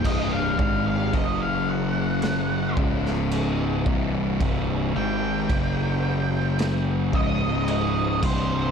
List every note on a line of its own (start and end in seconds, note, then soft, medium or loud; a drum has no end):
0.04 0.55 C1 loud
0.04 0.57 C2 loud
0.04 0.58 G2 loud
0.04 1.12 C3 medium
0.04 0.58 C3 loud
0.04 1.13 D4 medium
0.04 1.13 G4 medium
0.04 0.32 D#5 medium
0.04 kick medium
0.04 crash medium
0.32 0.58 F5 medium
0.59 1.10 G#1 loud
0.59 1.12 G#2 loud
0.59 1.13 D#3 loud
0.59 1.13 G#3 medium
0.59 0.86 F5 loud
0.59 kick loud
0.87 1.13 F5 medium
1.13 2.73 F#1 medium
1.13 2.76 F#2 medium
1.13 2.76 C#3 loud
1.13 2.76 F#3 medium
1.13 2.76 F#3 loud
1.13 2.76 C#4 medium
1.13 2.76 G#4 medium
1.13 1.41 D#5 medium
1.13 kick loud
1.13 crash medium
1.42 1.68 F5 medium
1.69 2.74 F#5 medium
2.22 snare loud
2.22 crash medium
2.77 3.82 C#1 medium
2.77 3.85 C#2 loud
2.77 3.85 G#2 loud
2.77 3.85 C#3 medium
2.77 3.85 C#3 loud
2.77 3.85 G#3 medium
2.77 3.85 D#4 medium
2.77 kick loud
3.06 snare soft
3.31 crash medium
3.86 4.37 C1 medium
3.86 4.39 C2 medium
3.86 4.40 G2 loud
3.86 5.48 C3 medium
3.86 4.40 C3 loud
3.86 5.48 D4 medium
3.86 5.48 G4 medium
3.86 kick loud
4.40 4.92 C1 loud
4.40 4.94 C2 loud
4.40 4.94 G2 loud
4.40 4.94 C3 loud
4.40 kick loud
4.40 crash medium
4.96 5.46 G#1 loud
4.96 5.49 G#2 medium
4.96 5.49 D#3 loud
4.96 5.49 G#3 loud
4.96 7.10 G5 medium
5.50 7.10 F#1 medium
5.50 7.12 F#2 loud
5.50 7.13 C#3 loud
5.50 7.13 F#3 loud
5.50 7.13 F#3 medium
5.50 7.13 C#4 medium
5.50 7.13 G#4 medium
5.50 kick loud
5.50 crash medium
6.59 snare loud
6.59 crash medium
7.13 8.19 C#1 medium
7.13 8.21 C#2 medium
7.13 8.21 G#2 loud
7.13 8.22 C#3 loud
7.13 8.23 C#3 medium
7.13 8.23 G#3 medium
7.13 8.23 D#4 medium
7.13 7.68 D#5 medium
7.13 kick loud
7.68 8.22 D#5 loud
7.68 crash medium
8.23 8.71 C1 loud
8.23 8.71 C2 medium
8.23 8.71 G2 loud
8.23 8.71 C3 loud
8.23 8.71 C3 medium
8.23 8.71 D4 medium
8.23 8.71 G4 medium
8.23 8.71 C5 loud
8.23 kick loud
8.23 crash loud